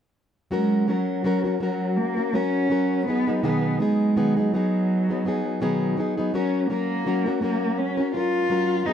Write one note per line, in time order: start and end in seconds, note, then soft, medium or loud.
0.51 0.87 F#3 medium
0.51 0.91 G#3 medium
0.51 0.87 C#4 medium
0.51 0.88 F#4 medium
0.51 0.89 A#4 medium
0.88 1.23 F#3 medium
0.88 1.61 F#3 medium
0.88 1.24 C#4 soft
0.88 1.25 F#4 soft
0.88 1.25 A#4 medium
1.24 1.44 F#3 medium
1.24 1.44 C#4 medium
1.24 1.44 F#4 medium
1.24 1.43 A#4 medium
1.44 1.60 C#4 soft
1.44 1.61 F#4 soft
1.44 1.60 A#4 soft
1.60 2.16 F#3 medium
1.60 1.99 F#3 medium
1.60 2.17 C#4 soft
1.60 2.17 F#4 medium
1.60 2.15 A#4 medium
1.97 2.35 A#3 medium
2.17 2.33 C#4 soft
2.17 2.33 F#4 soft
2.17 2.33 A#4 soft
2.33 2.69 F#3 medium
2.33 2.69 C#4 medium
2.33 3.05 C#4 loud
2.33 2.70 F#4 medium
2.33 2.70 A#4 medium
2.70 3.05 F#3 medium
2.70 3.06 C#4 medium
2.70 3.06 F#4 medium
2.70 3.07 A#4 medium
3.06 3.26 F#3 medium
3.06 3.39 B3 medium
3.06 3.27 B3 soft
3.06 3.27 D#4 soft
3.06 3.26 G#4 soft
3.27 3.43 F#3 soft
3.27 3.43 B3 soft
3.27 3.43 D#4 soft
3.27 3.42 G#4 soft
3.43 3.79 B2 medium
3.43 3.79 D#3 medium
3.43 3.78 F#3 medium
3.43 3.80 B3 medium
3.43 3.79 B3 medium
3.43 3.79 D#4 medium
3.43 3.79 G#4 medium
3.79 4.15 F#3 medium
3.79 4.52 G#3 medium
3.79 4.15 B3 medium
3.79 4.16 D#4 soft
3.79 4.16 G#4 medium
4.16 4.35 B2 medium
4.16 4.35 D#3 medium
4.16 4.35 F#3 medium
4.16 4.36 B3 medium
4.16 4.36 D#4 medium
4.16 4.35 G#4 medium
4.37 4.52 F#3 soft
4.37 4.53 B3 soft
4.37 4.52 D#4 soft
4.37 4.52 G#4 soft
4.51 5.96 F#3 medium
4.51 5.08 F#3 medium
4.51 5.09 B3 medium
4.51 5.09 D#4 medium
4.56 5.08 G#4 medium
5.09 5.24 F#3 soft
5.09 5.25 B3 soft
5.09 5.25 D#4 soft
5.09 5.24 G#4 soft
5.25 5.60 F#3 medium
5.25 5.61 B3 medium
5.25 5.61 D#4 medium
5.25 5.61 G#4 medium
5.61 5.96 B2 medium
5.61 5.97 D#3 medium
5.61 5.96 F#3 medium
5.61 5.97 B3 medium
5.61 5.97 D#4 medium
5.61 5.97 G#4 medium
5.97 6.16 F#3 medium
5.97 6.17 B3 medium
5.97 6.17 D#4 medium
5.97 6.16 G#4 medium
6.17 6.33 F#3 soft
6.17 6.34 B3 soft
6.17 6.33 D#4 soft
6.17 6.33 G#4 soft
6.34 6.68 F#3 medium
6.34 6.67 C#4 medium
6.34 6.69 C#4 medium
6.34 6.70 F#4 medium
6.34 6.70 A#4 medium
6.70 7.05 F#3 medium
6.70 7.37 A#3 medium
6.70 7.05 C#4 medium
6.70 7.06 F#4 medium
6.70 7.06 A#4 medium
7.06 7.25 F#3 medium
7.06 7.26 C#4 medium
7.06 7.26 F#4 medium
7.06 7.25 A#4 medium
7.26 7.41 C#4 soft
7.26 7.42 F#4 soft
7.26 7.41 A#4 soft
7.41 7.97 F#3 soft
7.41 7.79 A#3 medium
7.41 7.98 C#4 medium
7.41 7.98 F#4 medium
7.41 7.96 A#4 medium
7.78 8.14 C#4 medium
7.97 8.14 C#4 soft
7.97 8.14 F#4 soft
7.97 8.13 A#4 soft
8.14 8.49 F#3 medium
8.14 8.49 C#4 medium
8.14 8.87 F4 loud
8.14 8.50 A#4 medium
8.50 8.84 F#3 medium
8.50 8.86 C#4 medium
8.50 8.87 A#4 medium
8.85 8.93 F#3 soft
8.85 8.93 B3 soft
8.85 8.93 D#4 medium
8.85 8.93 D#4 soft
8.85 8.93 G#4 medium